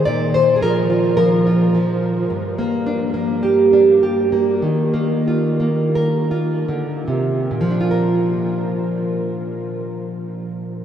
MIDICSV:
0, 0, Header, 1, 2, 480
1, 0, Start_track
1, 0, Key_signature, -2, "major"
1, 0, Tempo, 560748
1, 51, Time_signature, 4, 2, 24, 8
1, 2931, Tempo, 595238
1, 3891, Tempo, 638978
1, 4371, Tempo, 683371
1, 4851, Tempo, 741656
1, 5331, Tempo, 818554
1, 5811, Tempo, 851064
1, 7700, End_track
2, 0, Start_track
2, 0, Title_t, "Nylon-string guitar"
2, 0, Program_c, 0, 24
2, 47, Note_on_c, 0, 74, 91
2, 58, Note_on_c, 0, 46, 76
2, 286, Note_off_c, 0, 74, 0
2, 293, Note_on_c, 0, 72, 82
2, 480, Note_on_c, 0, 68, 61
2, 526, Note_on_c, 0, 53, 59
2, 527, Note_off_c, 0, 72, 0
2, 535, Note_on_c, 0, 70, 79
2, 765, Note_off_c, 0, 68, 0
2, 769, Note_on_c, 0, 65, 46
2, 990, Note_off_c, 0, 70, 0
2, 996, Note_off_c, 0, 53, 0
2, 1000, Note_on_c, 0, 70, 76
2, 1007, Note_on_c, 0, 53, 61
2, 1243, Note_off_c, 0, 65, 0
2, 1256, Note_on_c, 0, 65, 46
2, 1484, Note_off_c, 0, 53, 0
2, 1494, Note_on_c, 0, 53, 58
2, 1943, Note_off_c, 0, 46, 0
2, 1947, Note_off_c, 0, 65, 0
2, 1968, Note_off_c, 0, 70, 0
2, 1970, Note_on_c, 0, 43, 66
2, 1974, Note_off_c, 0, 53, 0
2, 2213, Note_on_c, 0, 58, 59
2, 2452, Note_on_c, 0, 62, 52
2, 2683, Note_off_c, 0, 58, 0
2, 2687, Note_on_c, 0, 58, 56
2, 2935, Note_on_c, 0, 67, 54
2, 3169, Note_off_c, 0, 62, 0
2, 3179, Note_on_c, 0, 62, 55
2, 3405, Note_off_c, 0, 67, 0
2, 3420, Note_on_c, 0, 67, 52
2, 3652, Note_off_c, 0, 58, 0
2, 3655, Note_on_c, 0, 58, 52
2, 3869, Note_off_c, 0, 62, 0
2, 3870, Note_off_c, 0, 67, 0
2, 3893, Note_off_c, 0, 43, 0
2, 3897, Note_on_c, 0, 51, 69
2, 4133, Note_off_c, 0, 58, 0
2, 4133, Note_on_c, 0, 58, 59
2, 4387, Note_on_c, 0, 65, 55
2, 4606, Note_off_c, 0, 58, 0
2, 4614, Note_on_c, 0, 58, 60
2, 4862, Note_on_c, 0, 70, 60
2, 5085, Note_off_c, 0, 65, 0
2, 5093, Note_on_c, 0, 65, 50
2, 5332, Note_off_c, 0, 51, 0
2, 5334, Note_on_c, 0, 50, 47
2, 5562, Note_off_c, 0, 50, 0
2, 5564, Note_on_c, 0, 48, 53
2, 5785, Note_off_c, 0, 65, 0
2, 5787, Note_off_c, 0, 70, 0
2, 5811, Note_off_c, 0, 48, 0
2, 5818, Note_on_c, 0, 46, 56
2, 5874, Note_on_c, 0, 53, 50
2, 5927, Note_off_c, 0, 58, 0
2, 5929, Note_on_c, 0, 62, 49
2, 5986, Note_on_c, 0, 65, 46
2, 6044, Note_on_c, 0, 70, 45
2, 7700, Note_off_c, 0, 46, 0
2, 7700, Note_off_c, 0, 53, 0
2, 7700, Note_off_c, 0, 62, 0
2, 7700, Note_off_c, 0, 65, 0
2, 7700, Note_off_c, 0, 70, 0
2, 7700, End_track
0, 0, End_of_file